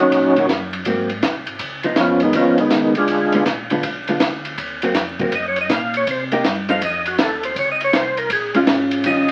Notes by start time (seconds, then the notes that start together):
0.00 D#2 F#3 C#4 D#4 F#4
0.12 A#2, kick, ride
0.36 D#3 A#3 C#4 F#4, ride
0.49 F#2, kick, snare, hi-hat pedal, ride
0.73 ride
0.85 G#2 F#3 A#3 C4, kick, ride
1.09 ride
1.23 D#2, kick, snare, hi-hat pedal, ride
1.35 C2
1.47 G#1, ride
1.59 C#2, kick, ride
1.83 F3 B3 D#4, ride
1.96 F2, kick, snare, hi-hat pedal, ride
2.00 F3 B3 C#4 F4
2.20 D#3 G#3 B3 D#4, ride
2.33 D#2 F3 B3 C#4 D#4 F4, kick, ride
2.58 D#3 G#3 B3 D#4, ride
2.70 C#2, kick, snare, hi-hat pedal, ride
2.95 G#3 D4 F4 G#4, ride
3.08 D2, kick, ride
3.32 D3 G#3 B3 F4, ride
3.46 A#1, kick, snare, hi-hat pedal, ride
3.70 D3 G#3 B3 F4, ride
3.83 B1, kick, ride
4.07 D3 G#3 B3 F4, ride
4.20 D2, kick, snare, hi-hat pedal, ride
4.45 ride
4.58 D#2, kick, ride
4.82 F#3 A#3 C4, ride
4.94 F2, kick, snare, hi-hat pedal, ride
5.19 F2 F#3 A#3 C4, kick, ride
5.32 F#2 D#5, kick, ride
5.48 C#5
5.56 ride
5.61 D#5
5.69 A#2 F5, kick, snare, hi-hat pedal, ride
5.94 C#5, ride
6.07 C3 C5, kick, ride
6.32 A#3 D#4 G4, ride
6.44 G2, kick, snare, hi-hat pedal, ride
6.69 F3 C4 D#4 A4 F5, ride
6.82 F2 D#5, kick, ride
7.06 F#4, ride
7.18 D#2 A4, kick, snare, hi-hat pedal, ride
7.43 C5, ride
7.56 C#2 C#5, kick, ride
7.72 D#5
7.81 C#5, ride
7.93 C2 C5, kick, snare, hi-hat pedal, ride
8.17 A#4, ride
8.30 A#1 G#4, kick, ride
8.54 G#3 C#4 F4, ride
8.67 G#1, kick, snare, hi-hat pedal, ride
8.91 ride
9.04 G1 D#3 G3 C#4 F4 D#5, kick, ride
9.29 ride